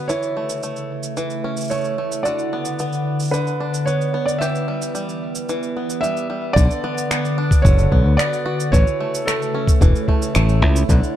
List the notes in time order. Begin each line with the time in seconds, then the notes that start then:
Already playing: B3 D4 F#4 B4
0.08 C#3 E3 E4 C#5, cabasa
0.23 cabasa
0.37 A3
0.45 A3
0.49 cabasa
0.63 A3, cabasa
0.73 E5, cabasa
1.03 cabasa
1.07 E4
1.17 E3, cabasa
1.30 cabasa
1.44 C#4
1.57 cabasa
1.61 cabasa
1.64 cabasa
1.68 C#5, cabasa
1.71 A3, cabasa
1.74 cabasa
1.81 cabasa
1.84 cabasa
1.98 A3
2.12 cabasa
2.23 D3 F#4 D5, cabasa
2.39 cabasa
2.53 B3
2.65 cabasa
2.79 B3, cabasa
2.93 cabasa
3.02 B3 F#4
3.20 B4, cabasa
3.22 cabasa
3.25 cabasa
3.28 cabasa
3.29 B4, cabasa
3.32 cabasa
3.34 D3, cabasa
3.47 cabasa
3.60 D4
3.74 cabasa
3.85 B3 C#5, cabasa
4.01 cabasa
4.14 B3
4.26 D5, cabasa
4.38 E3 G4 E5, cabasa
4.55 cabasa
4.68 G3
4.82 cabasa
4.95 G3, cabasa
5.09 cabasa
5.17 G4
5.35 cabasa
5.49 E3, cabasa
5.63 cabasa
5.77 B3
5.90 cabasa
6.01 G3 E5, cabasa
6.17 cabasa
6.30 G3
6.53 B1 D3 D5, kick, cabasa
6.71 cabasa
6.84 B3
6.98 cabasa
7.11 B3 F#4, finger snap, cabasa
7.25 cabasa
7.38 D4
7.51 kick, cabasa
7.62 F#1 D3 C#5, kick, cabasa
7.79 cabasa
7.92 B1 B3, kick
8.06 D2
8.17 B3 D5, finger snap, cabasa
8.33 cabasa
8.46 F#4
8.60 cabasa
8.72 A1 C#3 E3 C#5, kick, cabasa
8.87 cabasa
8.94 A3
9.00 A3
9.06 C#5
9.15 cabasa
9.26 A3 A4, finger snap, cabasa
9.42 cabasa
9.54 C#4
9.67 E4, kick, cabasa
9.81 E1 E3, kick, cabasa
9.96 cabasa
10.08 A3, kick
10.22 cabasa
10.35 A1 A3, finger snap, cabasa
10.49 cabasa
10.62 C#2 E4, kick
10.76 cabasa
10.89 B1 D3, kick, cabasa
11.04 cabasa